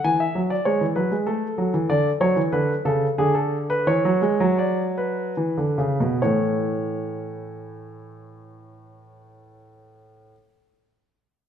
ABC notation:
X:1
M:3/4
L:1/16
Q:1/4=78
K:A
V:1 name="Grand piano"
g e2 d c2 B2 A4 | d2 c2 B2 A2 G A2 B | c4 d2 B6 | [E,A,c]12- |
[E,A,c]12 |]
V:2 name="Grand piano" clef=bass
E,2 F,2 G, E, F, G, A,2 F, E, | D,2 F, E, D,2 C,2 D,4 | E, F, G, F,4- F, E, D, C, B,, | A,,12- |
A,,12 |]